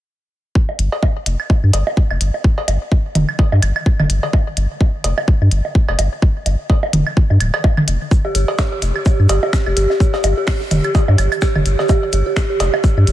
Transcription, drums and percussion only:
0.55 kick
0.69 high bongo
0.79 closed hi-hat
0.92 cowbell
1.03 kick, high bongo
1.26 closed hi-hat
1.40 claves
1.50 kick, high bongo
1.73 closed hi-hat, cowbell
1.87 high bongo
1.97 kick
2.11 claves
2.21 closed hi-hat
2.34 high bongo
2.44 kick
2.58 cowbell
2.68 closed hi-hat, high bongo
2.92 kick
3.15 closed hi-hat, mid tom, high bongo
3.29 claves
3.39 kick, cowbell
3.52 high bongo
3.62 closed hi-hat, claves
3.76 claves
3.86 kick
4.00 mid tom, high bongo, claves
4.10 closed hi-hat
4.23 cowbell
4.33 kick, high bongo
4.57 closed hi-hat
4.81 kick, high bongo
5.04 closed hi-hat, cowbell
5.18 high bongo, claves
5.28 kick
5.51 closed hi-hat
5.65 high bongo
5.75 kick
5.89 cowbell, claves
5.99 closed hi-hat, high bongo
6.22 kick
6.46 closed hi-hat, high bongo
6.70 kick, cowbell
6.83 high bongo
6.93 closed hi-hat, mid tom
7.07 claves
7.17 kick
7.30 high bongo
7.40 closed hi-hat, claves
7.54 cowbell, claves
7.64 kick, high bongo
7.77 mid tom, claves
7.88 closed hi-hat
8.11 kick, shaker
8.25 high bongo
8.35 closed hi-hat, shaker
8.48 cowbell
8.58 finger snap, kick, snare, high bongo, shaker
8.81 snare, closed hi-hat, shaker
8.96 claves
9.05 kick, high bongo, shaker
9.29 closed hi-hat, cowbell, shaker
9.43 high bongo
9.53 finger snap, kick, snare, shaker
9.66 claves
9.77 closed hi-hat, shaker
9.90 snare, high bongo
10.00 kick, shaker
10.13 snare, cowbell
10.24 closed hi-hat, high bongo, shaker
10.47 finger snap, kick, snare, open hi-hat
10.61 snare
10.71 closed hi-hat, mid tom, high bongo, shaker
10.84 closed hi-hat, claves
10.95 kick, cowbell, shaker
11.08 high bongo
11.18 closed hi-hat, claves, shaker
11.32 closed hi-hat, claves
11.42 finger snap, kick, snare, shaker
11.55 mid tom, high bongo, claves
11.66 closed hi-hat, shaker
11.79 snare, cowbell
11.89 kick, high bongo, shaker
12.12 closed hi-hat, shaker
12.36 finger snap, kick, snare, high bongo, shaker
12.60 snare, closed hi-hat, cowbell, shaker
12.74 high bongo, claves
12.84 kick, shaker
13.07 closed hi-hat, shaker

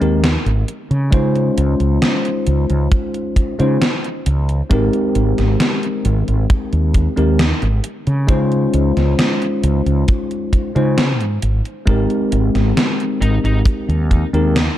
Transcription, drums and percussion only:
0.02 closed hi-hat
0.24 snare, closed hi-hat
0.46 closed hi-hat
0.68 closed hi-hat
0.91 closed hi-hat
1.12 kick, closed hi-hat
1.35 closed hi-hat
1.58 closed hi-hat
1.80 closed hi-hat
2.02 snare, closed hi-hat
2.25 closed hi-hat
2.47 closed hi-hat
2.70 closed hi-hat
2.92 kick, closed hi-hat
3.14 closed hi-hat
3.36 kick, closed hi-hat
3.60 closed hi-hat
3.82 snare, closed hi-hat
4.04 closed hi-hat
4.26 closed hi-hat
4.49 closed hi-hat
4.71 kick, closed hi-hat
4.93 closed hi-hat
5.15 closed hi-hat
5.38 snare, closed hi-hat
5.60 snare, closed hi-hat
5.83 closed hi-hat
6.05 closed hi-hat
6.28 closed hi-hat
6.50 kick, closed hi-hat
6.73 closed hi-hat
6.94 kick, closed hi-hat
7.17 closed hi-hat
7.39 snare, closed hi-hat
7.62 closed hi-hat
7.84 closed hi-hat
8.07 closed hi-hat
8.29 kick, closed hi-hat
8.52 closed hi-hat
8.74 closed hi-hat
8.97 snare, closed hi-hat
9.19 snare, closed hi-hat
9.42 closed hi-hat
9.63 closed hi-hat
9.86 closed hi-hat
10.08 kick, closed hi-hat
10.31 closed hi-hat
10.53 kick, closed hi-hat
10.76 closed hi-hat
10.98 snare, closed hi-hat
11.20 closed hi-hat
11.42 closed hi-hat
11.65 closed hi-hat
11.87 kick, closed hi-hat
12.10 closed hi-hat
12.32 closed hi-hat
12.55 snare, closed hi-hat
12.77 snare, closed hi-hat
13.00 closed hi-hat
13.22 closed hi-hat
13.45 closed hi-hat
13.65 kick, closed hi-hat
13.90 closed hi-hat
14.11 kick, closed hi-hat
14.34 closed hi-hat
14.56 snare, closed hi-hat

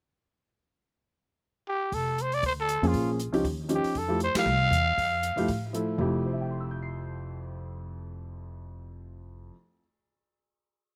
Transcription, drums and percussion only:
1.92 kick, open hi-hat
2.18 closed hi-hat
2.32 open hi-hat
2.43 kick, open hi-hat
2.69 closed hi-hat
2.84 open hi-hat
2.94 kick, open hi-hat
3.19 closed hi-hat
3.34 open hi-hat
3.44 kick, open hi-hat
3.69 closed hi-hat
3.84 open hi-hat
3.95 kick, open hi-hat
4.20 closed hi-hat
4.35 snare, ride
4.73 closed hi-hat
4.98 kick, open hi-hat
5.23 closed hi-hat
5.38 open hi-hat
5.48 kick, open hi-hat
5.74 closed hi-hat

